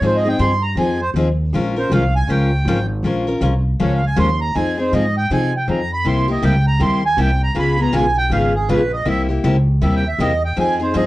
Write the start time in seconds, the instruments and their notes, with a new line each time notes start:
0.01 upright bass G#2, steel-string acoustic guitar F3 C4 D#4 G#4
0.06 accordion C5
0.17 accordion D#5
0.25 steel-string acoustic guitar C4 D#4 G#4
0.29 accordion G5
0.39 upright bass G2, steel-string acoustic guitar F3 C4 D#4 G#4, accordion C6
0.62 accordion A#5
0.76 upright bass F2, steel-string acoustic guitar F3 C4 D#4 G#4, accordion G#5
1.02 accordion C5
1.14 upright bass D#2, steel-string acoustic guitar F3 C4 D#4 G#4
1.53 upright bass A#1, steel-string acoustic guitar F3 G#3 C#4 F4 A#4
1.76 steel-string acoustic guitar C#4 F4 A#4, accordion C5
1.90 upright bass C2, steel-string acoustic guitar F3 G#3 C#4 F4 A#4, accordion F5
2.16 accordion G#5
2.28 upright bass C#2, steel-string acoustic guitar F3 G#3 C#4 F4 A#4, accordion G5
2.65 upright bass G#1, steel-string acoustic guitar F3 G#3 C#4 F4 A#4
3.03 upright bass A#1, steel-string acoustic guitar F3 G#3 C#4 F4 A#4
3.27 steel-string acoustic guitar C#4 F4 A#4
3.41 upright bass C2, steel-string acoustic guitar F3 G#3 C#4 F4 A#4
3.80 upright bass C#2, steel-string acoustic guitar F3 G#3 C#4 F4 A#4, accordion C#5
3.94 accordion F5
4.07 accordion G#5
4.16 upright bass D#2, steel-string acoustic guitar F3 G#3 C#4 F4 A#4, accordion C6
4.41 accordion A#5
4.55 upright bass F2, steel-string acoustic guitar F3 C4 D#4 G#4, accordion G#5
4.78 steel-string acoustic guitar C4 D#4 G#4, accordion C5
4.92 upright bass G#2, steel-string acoustic guitar F3 C4 D#4 G#4, accordion D#5
5.17 accordion G5
5.30 upright bass C3, steel-string acoustic guitar F3 C4 D#4 G#4, accordion G#5
5.57 accordion G5
5.68 upright bass F2, steel-string acoustic guitar F3 C4 D#4 G#4, accordion A#5
5.93 accordion B5
6.04 upright bass C2, steel-string acoustic guitar C3 G3 A#3 E4 G4, accordion C6
6.28 steel-string acoustic guitar A#3 E4 G4, accordion D#5
6.42 upright bass C#2, steel-string acoustic guitar C3 G3 A#3 E4 G4, accordion G5
6.67 accordion A#5
6.79 upright bass D#2, steel-string acoustic guitar C3 G3 A#3 E4 G4, accordion C6
7.06 accordion G#5
7.17 upright bass C2, steel-string acoustic guitar C3 G3 A#3 E4 G4, accordion G5
7.43 accordion A#5
7.55 upright bass C#2, steel-string acoustic guitar C#3 G#3 B3 F4 G#4
7.59 accordion B5
7.78 steel-string acoustic guitar B3 F4 G#4
7.82 accordion A#5
7.92 upright bass B1, steel-string acoustic guitar C#3 G#3 B3 F4 G#4, accordion G#5
8.18 accordion G5
8.30 upright bass G#1, steel-string acoustic guitar C#3 G#3 B3 F4 G#4, accordion F5
8.55 accordion G#4
8.69 upright bass A#1, steel-string acoustic guitar C#3 G#3 B3 F4 G#4, accordion B4
8.93 accordion D#5
9.05 upright bass C2, steel-string acoustic guitar C3 G3 A#3 E4 G4, accordion E5
9.28 steel-string acoustic guitar A#3 E4 G4
9.44 upright bass C#2, steel-string acoustic guitar C3 G3 A#3 E4 G4
9.81 upright bass D#2, steel-string acoustic guitar C3 G3 A#3 E4 G4, accordion E5
9.96 accordion G5
10.07 accordion E5
10.18 upright bass E2, steel-string acoustic guitar C3 G3 A#3 E4 G4, accordion D#5
10.45 accordion G5
10.56 upright bass F2, steel-string acoustic guitar F3 C4 D#4 G#4, accordion G#5
10.79 steel-string acoustic guitar C4 D#4 G#4, accordion C5
10.94 upright bass G2, steel-string acoustic guitar F3 C4 D#4 G#4, accordion D#5